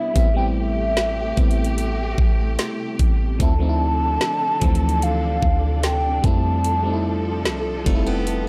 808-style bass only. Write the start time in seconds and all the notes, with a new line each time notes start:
0.16 A1
1.37 A1
2.18 A1
2.99 A1
3.40 D2
4.62 D2
5.43 D2
6.24 F2
7.45 C2
7.86 F1